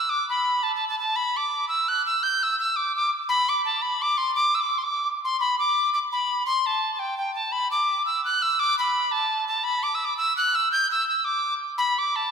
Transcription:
0.00 0.11 E6 medium
0.09 0.28 D6 loud
0.29 0.64 B5 medium
0.63 0.74 A5 medium
0.75 0.87 A5 medium
0.89 0.98 A5 medium
0.99 1.17 A5 medium
1.16 1.38 B5 loud
1.37 1.68 D6 medium
1.68 1.90 E6 medium
1.88 2.05 F#6 medium
2.06 2.24 E6 loud
2.23 2.44 G6 loud
2.43 2.58 E6 medium
2.59 2.78 E6 medium
2.76 2.95 D6 medium
2.96 3.10 D6 loud
3.29 3.50 B5 loud
3.49 3.64 D6 loud
3.65 3.83 A5 medium
3.82 4.03 B5 medium
4.02 4.19 D6 medium
4.17 4.34 C6 medium
4.35 4.56 D6 loud
4.55 4.62 E6 soft
4.60 4.79 D6 medium
4.78 4.85 C6 soft
4.83 5.07 D6 medium
5.25 5.39 C6 medium
5.40 5.58 B5 loud
5.59 5.90 D6 medium
5.93 5.99 D6 medium
6.12 6.43 B5 medium
6.46 6.68 C6 loud
6.66 6.94 A5 medium
6.94 7.01 A5 medium
6.99 7.17 G5 medium
7.18 7.34 G5 medium
7.35 7.53 A5 medium
7.52 7.71 B5 loud
7.71 8.03 D6 medium
8.06 8.24 E6 medium
8.25 8.44 F#6 loud
8.42 8.61 E6 loud
8.59 8.78 D6 loud
8.79 9.13 B5 medium
9.11 9.47 A5 medium
9.47 9.65 A5 medium
9.64 9.85 B5 loud
9.83 9.96 D6 loud
9.95 10.06 E6 medium
10.05 10.17 D6 medium
10.17 10.36 E6 loud
10.37 10.56 F#6 loud
10.55 10.71 E6 loud
10.72 10.90 G6 loud
10.91 11.07 E6 medium
11.08 11.17 E6 medium
11.17 11.26 E6 medium
11.24 11.54 D6 loud
11.78 12.00 B5 loud
11.98 12.17 D6 medium
12.16 12.31 A5 medium

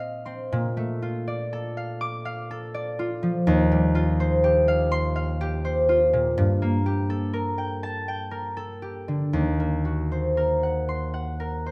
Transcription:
0.00 0.51 A#2 medium
0.00 0.82 A#3 medium
0.00 0.25 C4 medium
0.00 0.56 C5 medium
0.00 0.17 D#5 medium
0.00 1.76 F5 medium
0.00 0.82 A#5 medium
0.00 0.24 C6 medium
0.25 0.56 C4 soft
0.25 0.55 C6 medium
0.52 3.53 A#2 medium
0.77 3.53 A3 medium
1.02 2.98 F4 medium
1.28 2.73 D5 medium
1.53 2.49 A4 medium
1.77 2.24 F5 medium
2.01 3.53 D6 loud
2.25 4.67 F5 medium
2.51 3.53 A4 medium
2.74 3.52 D5 medium
2.99 3.94 F4 medium
3.23 6.42 F3 medium
3.47 6.42 D#2 loud
3.72 7.62 G3 medium
3.95 5.88 F4 medium
4.20 5.63 C5 medium
4.44 5.40 G4 medium
4.68 5.14 F5 medium
4.92 6.42 C6 loud
5.16 6.42 F5 medium
5.41 6.85 G4 medium
5.65 6.42 C5 medium
5.89 6.42 F4 medium
6.13 6.42 A#2 medium
6.38 9.38 G2 loud
6.62 9.59 A#3 medium
6.86 8.81 G4 medium
7.10 8.56 A4 medium
7.34 8.30 A#4 medium
7.58 8.07 G5 medium
7.83 9.38 A5 medium
8.08 9.38 G5 medium
8.31 10.36 A#4 medium
8.57 9.38 A4 medium
8.82 9.38 G4 medium
9.08 9.38 D3 medium
9.33 11.71 D#2 medium
9.60 11.71 A#3 medium
9.85 11.71 F#4 medium
10.12 11.65 C5 medium
10.37 11.39 A#4 medium
10.63 11.13 F#5 medium
10.89 11.71 C6 medium
11.14 11.71 F#5 medium
11.40 11.71 A#4 medium
11.66 11.71 C5 medium

